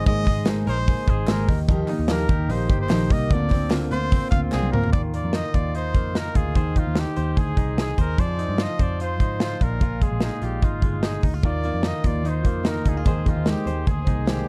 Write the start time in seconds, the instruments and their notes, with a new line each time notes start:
0.06 picked electric bass G#1, steel-string acoustic guitar G#3 A#3 D#4 G#4 C5, clean electric guitar G#3, trumpet D#5, kick, hi-hat pedal, open hi-hat
0.25 steel-string acoustic guitar D#4 G#4, clean electric guitar G#4, kick, clap, hi-hat pedal, open hi-hat
0.46 steel-string acoustic guitar G#3 A#3 D#4 G#4 C5, clean electric guitar D#4, snare, clap, hi-hat pedal, open hi-hat
0.66 picked electric bass A#1, steel-string acoustic guitar G#4 C5, clean electric guitar A#4, trumpet C5, hi-hat pedal, open hi-hat
0.71 steel-string acoustic guitar D#4
0.78 clean electric guitar C5
0.87 steel-string acoustic guitar A#3 D#4 G#4 C5, clean electric guitar G#4, kick, hi-hat pedal, open hi-hat
1.07 picked electric bass G#1, steel-string acoustic guitar D#4 G#4 C5, trumpet G#4, clean electric guitar C5, kick, hi-hat pedal, open hi-hat
1.27 picked electric bass G#1, steel-string acoustic guitar G#3 A#3 D#4 G#4 C5, clean electric guitar G#4, trumpet A#4, snare, clap, hi-hat pedal, open hi-hat
1.47 picked electric bass D#2, clean electric guitar D#3, steel-string acoustic guitar A#3 D#4 G4, kick, hi-hat pedal, open hi-hat
1.68 steel-string acoustic guitar D#3 F3 A#3 D#4 G4, clean electric guitar D#3, kick, hi-hat pedal, open hi-hat
1.88 steel-string acoustic guitar A#3 D#4 G4, clean electric guitar D#4, clap, hi-hat pedal, open hi-hat
1.99 picked electric bass D#2
2.08 steel-string acoustic guitar D#3 F3 A#3 D#4 G4, clean electric guitar A#3, trumpet A#4, snare, clap, hi-hat pedal, open hi-hat
2.29 picked electric bass D#2, steel-string acoustic guitar A#3 D#4, clean electric guitar G4, kick, hi-hat pedal, open hi-hat
2.49 picked electric bass A#1, steel-string acoustic guitar F3 A#3 D#4 G4, clean electric guitar D#4, trumpet C5, hi-hat pedal, open hi-hat
2.69 picked electric bass G1, steel-string acoustic guitar A#3 D#4 G4, clean electric guitar G4, kick, hi-hat pedal, open hi-hat
2.81 trumpet C5
2.89 picked electric bass A#1, steel-string acoustic guitar D#3 F3 A#3 D#4 G4, clean electric guitar D#4, snare, clap, hi-hat pedal, open hi-hat
3.09 picked electric bass C2, clean electric guitar A#3, steel-string acoustic guitar A#3 D#4 G4, trumpet D#5, kick, hi-hat pedal, open hi-hat
3.30 picked electric bass D2, clean electric guitar D3, steel-string acoustic guitar D3 A#3 C4 F4, trumpet D5, kick, hi-hat pedal, open hi-hat
3.49 steel-string acoustic guitar A#3 C4 F4, clean electric guitar C4, kick, clap, hi-hat pedal, open hi-hat
3.70 steel-string acoustic guitar D3 A#3 C4 F4, clean electric guitar A#3, snare, clap, hi-hat pedal, open hi-hat
3.91 picked electric bass D2, steel-string acoustic guitar C4 F4, clean electric guitar F4, trumpet C5, hi-hat pedal, open hi-hat
3.95 steel-string acoustic guitar A#3
4.11 steel-string acoustic guitar D3 A#3 C4 F4, clean electric guitar C4, kick, hi-hat pedal, open hi-hat
4.31 picked electric bass D2, steel-string acoustic guitar C4 F4, clean electric guitar F4, trumpet F5, kick, hi-hat pedal, open hi-hat
4.35 steel-string acoustic guitar A#3
4.52 picked electric bass C2, steel-string acoustic guitar D3 A#3 C4 F4, clean electric guitar C4, trumpet G#4, snare, clap
4.63 high tom
4.72 picked electric bass D2, clean electric guitar A#3, steel-string acoustic guitar A#3 C4 F4, trumpet A#4, mid tom
4.84 floor tom
4.93 picked electric bass D#2, clean electric guitar D#3 F4, trumpet D5, kick, closed hi-hat
5.14 clean electric guitar A#3, trumpet D5, closed hi-hat
5.24 picked electric bass F2
5.33 clean electric guitar D#4, trumpet D#5, snare, closed hi-hat
5.54 picked electric bass D#2, clean electric guitar F4, trumpet D5, kick, closed hi-hat
5.75 clean electric guitar D#4, trumpet C5, closed hi-hat
5.94 picked electric bass F2, clean electric guitar A#3, kick, closed hi-hat
6.15 clean electric guitar D#4, trumpet A#4, snare, closed hi-hat
6.35 picked electric bass D2, clean electric guitar F4, trumpet G#4, kick, closed hi-hat
6.55 picked electric bass D#2, clean electric guitar D#3 C5, kick, closed hi-hat
6.76 clean electric guitar D#4, trumpet F4, kick, closed hi-hat
6.87 picked electric bass D#2
6.95 snare, closed hi-hat
6.99 trumpet G4
7.16 picked electric bass D#2, clean electric guitar C5, closed hi-hat
7.37 picked electric bass D2, clean electric guitar G#4, trumpet G#4, kick, closed hi-hat
7.57 picked electric bass C2, clean electric guitar D#4, kick, closed hi-hat
7.78 clean electric guitar G#4, trumpet G#4, snare, closed hi-hat
7.98 picked electric bass D#2, trumpet A#4, clean electric guitar C5, kick, closed hi-hat
8.18 picked electric bass F2, clean electric guitar F3 C5, trumpet D5, kick, closed hi-hat
8.39 clean electric guitar D#4, closed hi-hat
8.49 picked electric bass G2
8.58 clean electric guitar F4, snare, closed hi-hat
8.63 trumpet D#5
8.79 picked electric bass F2, clean electric guitar C5, trumpet D5, kick, closed hi-hat
9.00 clean electric guitar F4, trumpet C5, closed hi-hat
9.20 picked electric bass G#2, clean electric guitar D#4, kick, closed hi-hat
9.40 clean electric guitar F4, trumpet C5, snare, closed hi-hat
9.61 picked electric bass A#1, clean electric guitar A#2, trumpet A#4, kick, closed hi-hat
9.81 picked electric bass A#1, clean electric guitar A#2 F4, kick, closed hi-hat
10.02 clean electric guitar G#3, trumpet G#4, kick, closed hi-hat
10.11 picked electric bass A#1
10.21 clean electric guitar D#4, trumpet G#4, snare, closed hi-hat
10.42 picked electric bass A#1, clean electric guitar F4, trumpet G4, closed hi-hat
10.62 picked electric bass G#1, clean electric guitar D#4, trumpet F4, kick, closed hi-hat
10.82 picked electric bass G1, clean electric guitar G#3, kick, closed hi-hat
11.03 clean electric guitar D#4, trumpet G#4, snare, closed hi-hat
11.23 picked electric bass D2, clean electric guitar D#4, kick, open hi-hat
11.34 clean electric guitar F4
11.43 picked electric bass D#2, steel-string acoustic guitar D#3 A#3 D#4 F4, clean electric guitar D#3 F4, trumpet D5, kick, closed hi-hat
11.63 clean electric guitar A#3, steel-string acoustic guitar A#3 D#4 F4, closed hi-hat
11.74 picked electric bass F2
11.83 steel-string acoustic guitar D#3 A#3 D#4 F4, clean electric guitar D#4, snare, closed hi-hat
11.87 trumpet D#5
12.03 picked electric bass D#2, steel-string acoustic guitar A#3 D#4 F4, clean electric guitar F4, trumpet D5, kick, closed hi-hat
12.22 steel-string acoustic guitar D#3 A#3 D#4 F4, clean electric guitar D#4, closed hi-hat
12.29 trumpet C5
12.43 picked electric bass F2, steel-string acoustic guitar A#3 D#4 F4, clean electric guitar A#3, kick, closed hi-hat
12.63 steel-string acoustic guitar D#3 A#3 D#4 F4, clean electric guitar D#4, snare, closed hi-hat
12.69 trumpet A#4
12.84 picked electric bass D2, steel-string acoustic guitar D#4 F4, clean electric guitar D#4, kick, closed hi-hat
12.89 trumpet G#4
12.97 clean electric guitar F4
13.04 picked electric bass D#2, steel-string acoustic guitar D#3 G#3 A#3 D#4 G#4 C5, clean electric guitar D#3 C5, kick, closed hi-hat
13.24 steel-string acoustic guitar A#3 D#4 G#4 C5, clean electric guitar D#4, kick, closed hi-hat
13.29 trumpet F4
13.36 picked electric bass D#2
13.45 steel-string acoustic guitar D#3 G#3 A#3 D#4 G#4 C5, trumpet G4, snare, closed hi-hat
13.65 picked electric bass D#2, steel-string acoustic guitar A#3 D#4 G#4 C5, clean electric guitar C5, closed hi-hat
13.85 picked electric bass D2, steel-string acoustic guitar A#3 D#4 G#4 C5, clean electric guitar G#4, trumpet G#4, kick, closed hi-hat
14.05 picked electric bass C2, steel-string acoustic guitar A#3 D#4 G#4 C5, clean electric guitar D#4, kick, closed hi-hat
14.25 steel-string acoustic guitar D#3 G#3 A#3 D#4 G#4 C5, trumpet G4, clean electric guitar G#4, snare, closed hi-hat